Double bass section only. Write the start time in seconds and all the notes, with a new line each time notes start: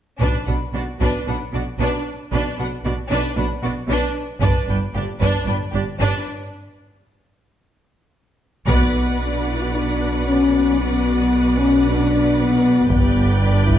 0.21 B1
0.48 B1
0.74 B1
1.00 B1
1.28 B1
1.54 B1
1.79 B1
2.33 B1
2.59 B1
2.85 B1
3.11 B1
3.38 B1
3.64 B1
3.89 B1
4.42 G1
4.68 G1
4.96 G1
5.22 G1
5.47 G1
5.75 G1
6.01 G1
8.68 B1
12.89 G1